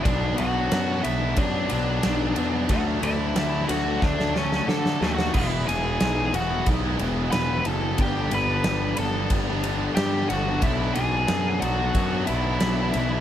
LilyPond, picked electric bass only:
\new Staff \with { instrumentName = "Picked electric bass" } { \clef bass \time 4/4 \key b \dorian \tempo 4 = 91 b,,8 b,,8 fis,8 b,,8 fis,8 b,,8 b,,8 e,8 | d,8 d,8 d,8 d,8 d,4 d8 dis,8 | e,,8 e,,8 b,,8 e,,8 b,,8 e,,8 e,,8 fis,,8 | g,,8 g,,8 g,,8 g,,8 g,,4 g,8 g,,8 |
b,,8 b,,8 fis,8 b,,8 fis,8 b,,8 b,,8 b,,8 | }